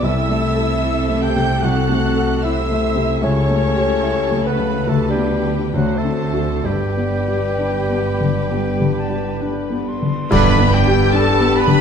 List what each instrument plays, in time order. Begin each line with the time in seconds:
0.03 grand piano C2, double bass section C2, cello section C3, bassoon E4, violin section A4 E6, french horn section A4 C5, viola section E5, oboe E5
0.29 grand piano A3
0.56 grand piano A4
0.83 grand piano E4
1.09 grand piano A3
1.23 bassoon G4, oboe G5, viola section G5, violin section G6
1.36 grand piano C3
1.63 grand piano C2, bassoon F#4, violin section A4 F#6, oboe F#5, viola section F#5
1.89 grand piano A3
2.16 grand piano A4
2.43 bassoon E4, grand piano E4, french horn section A4 C5, violin section C5 E6, viola section E5, oboe E5
2.70 grand piano A3
2.96 grand piano C3
3.21 grand piano C#2, double bass section C#2, cello section C#3, bassoon C#4, french horn section G4 A4, violin section A4 C#6, viola section C#5, oboe C#5
3.49 grand piano A3
3.76 grand piano G4
4.03 grand piano E4
4.32 grand piano A3
4.46 bassoon B3, oboe B4, viola section B4, violin section B5
4.59 grand piano C#3
4.87 grand piano D2, double bass section D2, cello section D3, bassoon A3, french horn section G4 B4, oboe A4, viola section A4, violin section B4 A5
5.10 bassoon G3, oboe G4, viola section G4, violin section G5
5.16 grand piano B3
5.45 grand piano D4 G4
5.74 grand piano D2, double bass section D2, cello section D3, bassoon F#3, oboe F#4, viola section F#4, french horn section F#4 C5, violin section C5 F#5
5.97 bassoon A3, oboe A4, viola section A4, violin section A5
6.04 grand piano C4
6.33 grand piano D4 F#4
6.64 double bass section G1, grand piano G2, cello section G2, bassoon G3, oboe G4, french horn section G4 B4, viola section G4, violin section B4 G5
6.97 grand piano B3
7.28 grand piano G4
7.58 grand piano D4, flute G5
7.90 grand piano B3
8.07 flute B5
8.21 grand piano D3
8.51 grand piano B3, flute G5
8.81 grand piano D3
8.98 flute A5
9.11 grand piano G4
9.41 grand piano D4, flute B5
9.70 grand piano B3
9.88 flute C6
10.02 grand piano D3
10.31 double bass section G1, grand piano G2, timpani G2, bassoon D3, violin section G3 G4 B5, french horn section D4 G4, viola section B4, trumpet B4, oboe D5, flute B5, concert bass drum, crash
10.52 violin section B3
10.59 grand piano B3
10.72 violin section D4 G5, viola section G4, trumpet G4, flute G5
10.87 grand piano G4
10.92 violin section B3
11.13 violin section G3 A5, grand piano D4, viola section A4, trumpet A4, flute A5
11.33 violin section B3
11.41 grand piano B3
11.52 violin section D4, viola section B4, flute B5
11.56 trumpet B4, violin section B5
11.67 grand piano D3
11.73 violin section B3